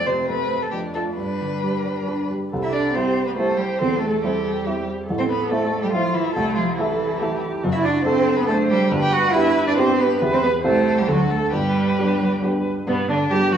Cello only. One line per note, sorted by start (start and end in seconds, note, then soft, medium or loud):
0.00 0.68 A3 soft
0.72 1.20 A3 soft
1.18 2.31 G3 soft
2.63 2.72 E4 medium
2.73 2.94 D4 medium
2.94 3.26 C4 medium
3.28 3.36 B3 medium
3.36 3.56 A3 medium
3.57 3.65 G3 medium
3.81 4.01 C4 medium
4.00 4.25 A3 medium
4.23 4.87 G3 medium
5.19 5.23 C4 medium
5.31 5.53 B3 medium
5.51 5.84 A3 medium
5.83 5.95 G3 medium
5.93 6.14 F3 medium
6.14 6.22 E3 medium
6.37 6.58 A3 medium
6.57 6.79 F3 medium
6.78 7.42 E3 medium
7.74 7.87 E4 medium
7.85 8.06 D4 medium
8.07 8.38 C4 medium
8.41 8.49 B3 medium
8.50 8.72 A3 medium
8.71 8.92 G3 medium
9.03 9.14 G4 medium
9.13 9.33 F#4 medium
9.32 9.65 E4 loud
9.68 9.72 D4 medium
9.79 10.01 C4 medium
10.00 10.21 B3 medium
10.33 10.37 C4 medium
10.43 10.51 B3 medium
10.65 11.01 A3 medium
10.99 11.09 G3 medium
11.10 11.30 F#3 medium
11.30 11.38 A3 medium
11.54 12.42 G3 medium
12.88 13.08 B2 medium
13.10 13.29 D3 medium
13.30 13.38 G3 medium
13.50 13.57 F#3 medium